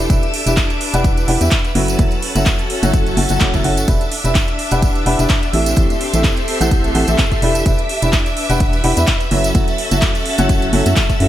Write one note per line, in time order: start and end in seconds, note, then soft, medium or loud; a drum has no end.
0.00 1.75 D4 medium
0.00 1.75 G4 medium
0.00 0.61 A4 medium
0.00 1.73 E5 medium
0.00 1.75 E5 medium
0.00 1.73 D6 medium
0.00 1.73 E6 medium
0.10 0.20 E1 loud
0.10 0.23 E3 medium
0.10 0.23 D4 medium
0.10 0.23 E4 medium
0.10 0.23 G4 medium
0.10 0.23 B4 medium
0.10 0.23 E5 medium
0.10 kick loud
0.10 closed hi-hat soft
0.10 tambourine medium
0.22 closed hi-hat soft
0.22 tambourine soft
0.34 open hi-hat loud
0.46 0.62 E1 loud
0.46 0.65 E3 medium
0.46 0.65 D4 medium
0.46 0.65 E4 medium
0.46 0.65 G4 medium
0.46 0.65 B4 medium
0.46 0.65 E5 medium
0.46 closed hi-hat medium
0.46 tambourine medium
0.57 kick loud
0.57 clap loud
0.57 closed hi-hat soft
0.57 tambourine medium
0.70 2.61 B4 medium
0.70 closed hi-hat soft
0.70 tambourine soft
0.81 open hi-hat loud
0.94 1.26 E1 medium
0.94 1.26 E3 medium
0.94 1.26 D4 medium
0.94 1.26 E4 medium
0.94 1.26 G4 medium
0.94 1.26 B4 medium
0.94 1.26 F#5 loud
0.94 closed hi-hat soft
0.94 tambourine medium
1.04 kick loud
1.04 closed hi-hat soft
1.04 tambourine medium
1.17 closed hi-hat soft
1.17 tambourine soft
1.28 1.38 E1 loud
1.28 1.38 E3 loud
1.28 1.38 D4 medium
1.28 1.38 E4 medium
1.28 1.38 G4 medium
1.28 1.38 B4 medium
1.28 1.38 F#5 loud
1.28 open hi-hat loud
1.41 1.49 E2 loud
1.41 1.52 E3 medium
1.41 1.52 D4 medium
1.41 1.52 E4 medium
1.41 1.52 G4 medium
1.41 1.52 B4 medium
1.41 1.52 E5 loud
1.41 closed hi-hat soft
1.41 tambourine medium
1.51 kick loud
1.51 clap loud
1.51 closed hi-hat medium
1.65 closed hi-hat soft
1.65 tambourine soft
1.75 1.97 F#1 medium
1.75 1.96 F#3 medium
1.75 3.88 C#4 medium
1.75 1.96 C#4 medium
1.75 1.96 E4 medium
1.75 1.96 F#4 medium
1.75 1.96 A4 medium
1.75 1.96 E5 loud
1.75 3.86 F#5 medium
1.75 3.86 E6 medium
1.75 3.86 A6 medium
1.75 open hi-hat loud
1.88 closed hi-hat medium
1.88 tambourine medium
1.99 2.09 F#1 loud
1.99 2.12 F#3 medium
1.99 2.12 C#4 medium
1.99 2.12 E4 medium
1.99 2.12 F#4 medium
1.99 2.12 A4 medium
1.99 2.12 E5 medium
1.99 kick loud
1.99 closed hi-hat medium
1.99 tambourine medium
2.09 3.88 F#4 medium
2.09 4.55 A4 medium
2.09 closed hi-hat soft
2.09 tambourine soft
2.22 open hi-hat loud
2.35 2.51 F#1 loud
2.35 2.54 F#3 medium
2.35 2.54 C#4 medium
2.35 2.54 E4 medium
2.35 2.54 F#4 medium
2.35 2.54 A4 medium
2.35 2.54 E5 medium
2.35 closed hi-hat soft
2.35 tambourine medium
2.46 kick loud
2.46 clap loud
2.46 closed hi-hat soft
2.46 tambourine medium
2.59 closed hi-hat soft
2.59 tambourine soft
2.70 11.28 E5 medium
2.70 open hi-hat loud
2.83 3.15 F#1 medium
2.83 3.15 F#3 loud
2.83 3.15 C#4 medium
2.83 3.15 E4 medium
2.83 3.15 F#4 medium
2.83 3.14 A4 medium
2.83 3.15 F#5 loud
2.83 closed hi-hat soft
2.83 tambourine medium
2.93 kick loud
2.93 closed hi-hat medium
2.93 tambourine medium
3.06 closed hi-hat soft
3.06 tambourine soft
3.17 3.27 F#1 loud
3.17 3.27 F#3 medium
3.17 3.27 C#4 medium
3.17 3.27 E4 medium
3.17 3.27 F#4 medium
3.17 3.27 A4 medium
3.17 3.27 F#5 medium
3.17 open hi-hat loud
3.29 3.38 F#1 medium
3.29 3.39 F#3 medium
3.29 3.39 C#4 medium
3.29 3.39 E4 medium
3.29 3.39 F#4 medium
3.29 3.39 A4 medium
3.29 3.39 F#5 medium
3.29 closed hi-hat soft
3.29 tambourine medium
3.40 3.52 F#3 medium
3.40 3.52 C#4 medium
3.40 3.52 E4 medium
3.40 3.52 F#4 medium
3.40 3.52 A4 medium
3.40 3.52 F#5 loud
3.40 kick loud
3.40 clap loud
3.40 closed hi-hat medium
3.40 tambourine medium
3.54 3.62 F#1 medium
3.54 3.63 F#3 medium
3.54 3.63 C#4 medium
3.54 3.63 E4 medium
3.54 3.63 F#4 medium
3.54 3.63 A4 medium
3.54 3.63 E5 medium
3.54 kick medium
3.54 closed hi-hat soft
3.54 tambourine soft
3.64 3.86 F#1 medium
3.64 3.84 C#4 loud
3.64 3.83 E4 medium
3.64 3.83 F#4 medium
3.64 3.83 A4 medium
3.64 3.83 F#5 loud
3.64 open hi-hat loud
3.77 closed hi-hat soft
3.77 tambourine medium
3.88 3.98 E1 medium
3.88 4.01 E3 medium
3.88 4.01 D4 medium
3.88 6.30 D4 medium
3.88 4.01 E4 medium
3.88 4.01 G4 medium
3.88 4.01 B4 medium
3.88 5.52 E5 medium
3.88 4.01 E5 medium
3.88 5.52 D6 medium
3.88 5.52 E6 medium
3.88 kick loud
3.88 closed hi-hat medium
3.88 tambourine medium
4.01 closed hi-hat soft
4.01 tambourine soft
4.12 open hi-hat loud
4.24 4.40 E1 medium
4.24 4.43 E3 medium
4.24 4.43 D4 medium
4.24 4.43 E4 medium
4.24 4.43 G4 medium
4.24 4.43 B4 medium
4.24 4.43 E5 medium
4.24 closed hi-hat medium
4.24 tambourine medium
4.35 kick loud
4.35 clap loud
4.35 closed hi-hat soft
4.35 tambourine medium
4.40 9.31 G4 medium
4.47 closed hi-hat soft
4.47 tambourine soft
4.59 open hi-hat medium
4.71 5.04 E1 medium
4.71 5.03 E3 loud
4.71 5.03 D4 medium
4.71 5.04 E4 medium
4.71 5.03 G4 medium
4.71 5.03 B4 medium
4.71 5.04 F#5 loud
4.71 closed hi-hat medium
4.71 tambourine medium
4.82 kick loud
4.82 closed hi-hat soft
4.82 tambourine medium
4.95 closed hi-hat soft
4.95 tambourine soft
5.06 5.16 E1 loud
5.06 5.16 E3 loud
5.06 5.16 D4 medium
5.06 5.16 E4 medium
5.06 5.16 G4 medium
5.06 5.16 B4 medium
5.06 5.16 F#5 loud
5.06 open hi-hat loud
5.19 5.27 E1 loud
5.19 5.30 E3 medium
5.19 5.30 D4 medium
5.19 5.30 E4 medium
5.19 5.30 G4 medium
5.19 5.30 B4 medium
5.19 5.29 E5 loud
5.19 closed hi-hat soft
5.19 tambourine medium
5.30 kick loud
5.30 clap loud
5.30 closed hi-hat medium
5.30 tambourine medium
5.43 closed hi-hat soft
5.43 tambourine soft
5.53 5.75 A1 medium
5.53 5.74 A2 medium
5.53 7.42 C4 medium
5.53 5.74 C4 medium
5.53 5.74 E4 medium
5.53 5.74 G4 medium
5.53 7.40 G4 medium
5.53 5.74 A4 medium
5.53 7.40 A4 medium
5.53 5.74 E5 loud
5.53 7.40 C6 medium
5.53 open hi-hat medium
5.66 closed hi-hat soft
5.66 tambourine medium
5.76 5.87 A1 medium
5.76 5.90 A2 medium
5.76 5.90 C4 medium
5.76 5.90 E4 medium
5.76 5.90 G4 medium
5.76 5.90 A4 medium
5.76 5.90 E5 medium
5.76 kick loud
5.76 closed hi-hat medium
5.76 tambourine medium
5.90 closed hi-hat soft
5.90 tambourine soft
6.01 open hi-hat loud
6.13 6.29 A1 medium
6.13 6.32 A2 medium
6.13 6.32 C4 medium
6.13 6.32 E4 medium
6.13 6.32 G4 medium
6.13 6.32 A4 medium
6.13 6.32 E5 medium
6.13 closed hi-hat medium
6.13 tambourine medium
6.24 kick loud
6.24 clap loud
6.24 closed hi-hat soft
6.24 tambourine medium
6.37 8.06 A4 medium
6.37 closed hi-hat soft
6.37 tambourine soft
6.48 open hi-hat medium
6.61 6.93 A1 medium
6.61 6.92 A2 medium
6.61 6.92 C4 medium
6.61 6.92 E4 medium
6.61 6.92 G4 medium
6.61 6.92 A4 medium
6.61 6.92 F#5 loud
6.61 closed hi-hat medium
6.61 tambourine medium
6.71 kick loud
6.71 closed hi-hat medium
6.71 tambourine medium
6.84 closed hi-hat soft
6.84 tambourine soft
6.95 7.05 A1 medium
6.95 7.05 A2 loud
6.95 7.05 C4 medium
6.95 7.05 E4 medium
6.95 7.05 G4 medium
6.95 7.05 A4 medium
6.95 7.05 F#5 loud
6.95 open hi-hat loud
7.08 7.16 A1 medium
7.08 7.19 A2 medium
7.08 7.19 C4 medium
7.08 7.19 E4 medium
7.08 7.19 G4 medium
7.08 7.19 A4 medium
7.08 7.19 E5 loud
7.08 closed hi-hat medium
7.08 tambourine medium
7.18 kick loud
7.18 clap loud
7.18 closed hi-hat medium
7.18 tambourine medium
7.32 kick medium
7.32 closed hi-hat soft
7.32 tambourine soft
7.42 7.64 E1 medium
7.42 7.63 E3 medium
7.42 9.31 D4 medium
7.42 7.63 D4 medium
7.42 7.63 E4 medium
7.42 7.63 G4 medium
7.42 7.63 B4 medium
7.42 9.29 E5 medium
7.42 7.63 E5 loud
7.42 9.29 D6 medium
7.42 9.29 E6 medium
7.42 open hi-hat loud
7.55 closed hi-hat medium
7.55 tambourine medium
7.66 7.76 E1 medium
7.66 7.79 E3 medium
7.66 7.79 D4 medium
7.66 7.79 E4 medium
7.66 7.79 G4 medium
7.66 7.79 B4 medium
7.66 7.79 E5 medium
7.66 kick loud
7.66 closed hi-hat medium
7.66 tambourine medium
7.78 closed hi-hat soft
7.78 tambourine soft
7.89 open hi-hat medium
8.02 8.18 E1 medium
8.02 8.21 E3 medium
8.02 8.21 D4 medium
8.02 8.21 E4 medium
8.02 8.21 G4 medium
8.02 8.21 B4 medium
8.02 8.21 E5 medium
8.02 closed hi-hat medium
8.02 tambourine medium
8.13 kick loud
8.13 clap loud
8.13 closed hi-hat medium
8.13 tambourine medium
8.26 10.17 B4 medium
8.26 closed hi-hat soft
8.26 tambourine soft
8.37 open hi-hat medium
8.50 8.82 E1 loud
8.50 8.81 E3 loud
8.50 8.81 D4 medium
8.50 8.81 E4 medium
8.50 8.81 G4 medium
8.50 8.81 B4 medium
8.50 8.81 F#5 loud
8.50 closed hi-hat medium
8.50 tambourine medium
8.60 kick loud
8.60 closed hi-hat medium
8.60 tambourine medium
8.73 closed hi-hat soft
8.73 tambourine soft
8.84 8.94 E1 loud
8.84 8.94 E3 loud
8.84 8.94 D4 medium
8.84 8.94 E4 medium
8.84 8.94 G4 medium
8.84 8.94 B4 medium
8.84 8.94 F#5 loud
8.84 open hi-hat loud
8.97 9.05 E2 medium
8.97 9.07 E3 medium
8.97 9.07 D4 medium
8.97 9.07 E4 medium
8.97 9.07 G4 medium
8.97 9.07 B4 medium
8.97 9.07 E5 loud
8.97 closed hi-hat medium
8.97 tambourine medium
9.07 kick loud
9.07 clap loud
9.07 closed hi-hat medium
9.07 tambourine medium
9.20 closed hi-hat soft
9.20 tambourine soft
9.31 9.53 F#1 medium
9.31 9.52 F#3 medium
9.31 9.52 C#4 medium
9.31 11.28 C#4 medium
9.31 9.52 E4 medium
9.31 9.52 F#4 medium
9.31 9.52 A4 medium
9.31 9.52 E5 loud
9.31 11.28 F#5 medium
9.31 11.28 E6 medium
9.31 11.28 A6 medium
9.31 open hi-hat medium
9.44 11.28 F#4 medium
9.44 closed hi-hat medium
9.44 tambourine medium
9.55 9.65 F#1 medium
9.55 9.68 F#3 medium
9.55 9.68 C#4 medium
9.55 9.68 E4 medium
9.55 9.68 F#4 medium
9.55 9.68 A4 medium
9.55 9.68 E5 medium
9.55 kick loud
9.55 closed hi-hat medium
9.55 tambourine medium
9.67 11.28 A4 medium
9.67 closed hi-hat soft
9.67 tambourine soft
9.78 open hi-hat loud
9.91 10.07 F#1 medium
9.91 10.10 F#3 medium
9.91 10.10 C#4 medium
9.91 10.10 E4 medium
9.91 10.10 F#4 medium
9.91 10.10 A4 medium
9.91 10.10 E5 medium
9.91 closed hi-hat medium
9.91 tambourine medium
10.02 kick loud
10.02 clap loud
10.02 closed hi-hat medium
10.02 tambourine medium
10.15 closed hi-hat soft
10.15 tambourine soft
10.26 open hi-hat medium
10.38 10.71 F#1 medium
10.38 10.70 F#3 loud
10.38 10.70 C#4 medium
10.38 10.70 E4 medium
10.38 10.70 F#4 medium
10.38 10.70 A4 medium
10.38 10.70 F#5 loud
10.38 closed hi-hat medium
10.38 tambourine medium
10.49 kick loud
10.49 closed hi-hat medium
10.49 tambourine medium
10.62 closed hi-hat soft
10.62 tambourine soft
10.73 10.83 F#1 medium
10.73 10.83 F#3 loud
10.73 10.83 C#4 medium
10.73 10.83 E4 medium
10.73 10.83 F#4 medium
10.73 10.83 A4 medium
10.73 10.83 F#5 loud
10.73 open hi-hat loud
10.86 10.94 F#2 medium
10.86 10.96 F#3 loud
10.86 10.96 C#4 medium
10.86 10.96 E4 medium
10.86 10.96 F#4 medium
10.86 10.96 A4 medium
10.86 10.96 E5 loud
10.86 closed hi-hat medium
10.86 tambourine medium
10.96 kick loud
10.96 clap loud
10.96 closed hi-hat medium
10.96 tambourine medium
11.10 kick medium
11.10 closed hi-hat soft
11.10 tambourine soft
11.20 11.28 F#2 medium
11.20 11.28 C#4 medium
11.20 11.28 E4 medium
11.20 11.28 F#4 medium
11.20 11.28 A4 medium
11.20 11.28 E5 loud
11.20 open hi-hat medium